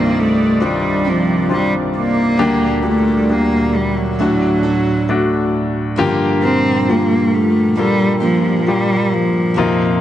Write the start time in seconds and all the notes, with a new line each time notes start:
Already playing: C2 G2 C3 D#3 G3 A#3 C4 D4 D#4 F4 G4 D5
0.19 A3
0.60 G3 C4 D4 F4 G4
0.64 G3
1.04 G3 C4 D4 G4
1.09 F3
1.49 C4 D4 F4
1.53 G3
1.98 A#3
2.38 D2 A#2 D3 G3 A#3 D4 G4
2.42 G4
2.82 A#2 D4 G4
2.87 A3
3.29 A#3 D4 G4
3.76 G3
3.98 F#3
4.19 D2 A2 F#3 A3 D4 F#4 A4
4.63 D4 F#4 A4
5.09 A3 D4 F#4
5.96 G2 A#2 D3 F3 G3 A#3 D4 F4 G4
6.01 G4
6.43 A#3 C4 F4 A#4
6.88 A#2 A#3 F4 G4
7.34 A3
7.75 F3 G3 A#3 D4 F4 G4 A4
8.20 F3 A#3 D4 G4
8.67 G3 A#3 F4 G4
9.13 F3
9.54 F2 C3 F3 A#3 C4 D#4
9.58 F4